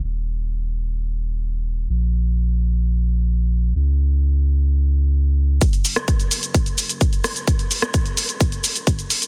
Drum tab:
HH |----------------|----------------|----------------|xxoxxxoxxxoxxxox|
SH |----------------|----------------|----------------|xxxxxxxxxxxxxxxx|
SD |----------------|----------------|----------------|---r----------r-|
BD |----------------|----------------|----------------|o---o---o---o---|

HH |xxoxxxoxxxoxxxox|
SH |xxxxxxxxxxxxxxxx|
SD |---r------------|
BD |o---o---o---o---|